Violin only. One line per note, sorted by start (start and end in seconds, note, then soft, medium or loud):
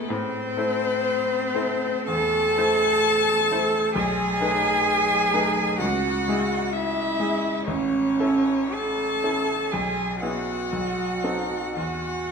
0.00 0.11 A4 medium
0.09 2.08 C5 medium
2.06 3.95 A5 loud
3.96 5.77 G#5 loud
5.79 6.74 F#5 medium
6.72 7.65 E5 medium
7.66 8.74 C#5 medium
8.73 9.74 A5 medium
9.73 10.21 G#5 medium
10.22 11.74 F#5 medium
11.77 12.31 F#5 medium